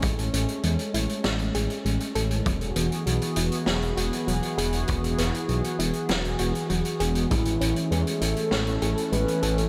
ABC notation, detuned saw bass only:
X:1
M:4/4
L:1/8
Q:1/4=99
K:A
V:1 name="Detuned saw bass" clef=bass
A,,, A,,, E,, A,,, A,,, A,,, A,,, A,,, | E,,, E,,, B,,, E,,, E,,, E,,, E,,, E,,, | E,,, E,,, B,,, E,,, E,,, E,,, E,,, E,,, | A,,, A,,, E,, A,,, A,,, A,,, A,,, A,,, |]